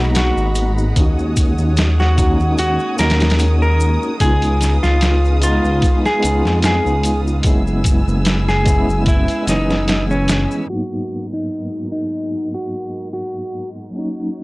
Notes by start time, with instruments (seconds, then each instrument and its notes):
Already playing: detuned saw bass B1, synth texture G#3 G#4, tine electric piano A#3 B3 D#4 F#4, violin section F#5 A#5 B5
0.15 clean electric guitar F#4, snare, closed hi-hat, maracas
0.37 detuned saw bass G#1, maracas
0.55 closed hi-hat, maracas
0.78 maracas
0.93 detuned saw bass D#2, tine electric piano A#3 C#4, violin section C#5 D#6, kick, closed hi-hat, maracas
0.99 tine electric piano D#4 F#4
1.19 maracas
1.37 kick, closed hi-hat, maracas
1.58 detuned saw bass D#2, maracas
1.77 snare, closed hi-hat, maracas
1.99 clean electric guitar F#4, snare, maracas
2.16 tine electric piano A#3 C#4 D#4, kick, closed hi-hat, maracas
2.20 tine electric piano F#4
2.40 detuned saw bass D#2, maracas
2.58 detuned saw bass D#2, clean electric guitar F#4, closed hi-hat, maracas
2.79 maracas
2.96 detuned saw bass D#2, tine electric piano A#3 C#4, clean electric guitar A#4, closed hi-hat, maracas
3.01 tine electric piano D#4 F#4, snare
3.10 snare, closed hi-hat
3.20 snare, closed hi-hat, maracas
3.30 snare, closed hi-hat
3.39 closed hi-hat, maracas
3.62 clean electric guitar A#4, maracas
3.80 maracas
4.03 maracas
4.18 detuned saw bass C#2, tine electric piano G#3 B3, clean electric guitar G#4, violin section B4 F5, kick, closed hi-hat, maracas
4.23 tine electric piano D#4 F4
4.42 closed hi-hat, maracas
4.61 snare, closed hi-hat, maracas
4.83 detuned saw bass C#2, clean electric guitar F4, snare, maracas
5.01 snare, closed hi-hat, maracas
5.25 maracas
5.41 tine electric piano G#3 B3 D#4, clean electric guitar F4, closed hi-hat, maracas
5.45 tine electric piano F4
5.64 detuned saw bass C#2, maracas
5.82 kick, closed hi-hat, maracas
6.05 clean electric guitar G#4, snare, maracas
6.20 tine electric piano G#3 B3, closed hi-hat
6.24 detuned saw bass C#2, tine electric piano D#4, maracas
6.28 tine electric piano F4
6.45 detuned saw bass F2, snare, maracas
6.62 clean electric guitar G#4, snare, closed hi-hat, maracas
6.86 detuned saw bass C#2, maracas
7.03 closed hi-hat, maracas
7.27 maracas
7.41 detuned saw bass F#1, tine electric piano G#3 B3, violin section B4 G#5 E6, kick, closed hi-hat
7.45 tine electric piano C#4, maracas
7.49 tine electric piano E4
7.67 maracas
7.84 kick, closed hi-hat, maracas
8.07 detuned saw bass F#1, maracas
8.25 snare, closed hi-hat, maracas
8.49 clean electric guitar G#4, snare, maracas
8.65 tine electric piano G#3 B3 C#4, kick, closed hi-hat, maracas
8.69 tine electric piano E4
8.89 detuned saw bass F#1, maracas
9.06 detuned saw bass F#1, clean electric guitar E4, kick, closed hi-hat, maracas
9.28 closed hi-hat, maracas
9.43 tine electric piano G#3 B3
9.47 detuned saw bass F#1, tine electric piano E3 C#4, clean electric guitar D#4, snare, closed hi-hat, maracas
9.70 snare, maracas
9.88 snare, closed hi-hat, maracas
10.11 clean electric guitar C#4, maracas
10.28 snare, closed hi-hat, maracas
10.51 maracas
10.66 tine electric piano G#2 F#3, violin section G#3 F#4 A#4, clean electric guitar F#4
10.70 tine electric piano A#3 B3
10.74 tine electric piano D#4
11.33 clean electric guitar D#4
11.92 clean electric guitar D#4
12.54 clean electric guitar F#4
13.13 clean electric guitar F#4
13.90 tine electric piano F#3 A#3, violin section D#4 F#5
13.94 tine electric piano C#4, violin section C#5
13.99 tine electric piano D#4